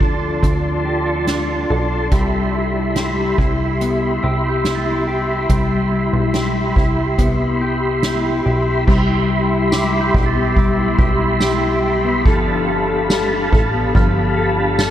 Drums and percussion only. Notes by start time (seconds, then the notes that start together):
0.01 kick
0.43 kick, closed hi-hat
1.27 snare, closed hi-hat
2.11 kick, closed hi-hat
2.96 snare, closed hi-hat
3.38 kick
3.81 closed hi-hat
4.65 snare, closed hi-hat
5.49 kick, closed hi-hat
6.34 snare, closed hi-hat
6.76 kick
7.18 kick, closed hi-hat
8.03 snare, closed hi-hat
8.88 kick, crash
9.30 ride
9.72 snare, ride, tambourine
10.14 kick
10.56 kick, ride
10.98 kick, ride
11.41 snare, tambourine
11.83 ride
12.25 kick, ride
12.68 ride
13.10 snare, tambourine
13.53 kick, ride
13.95 kick, ride
14.37 ride
14.79 snare, ride, tambourine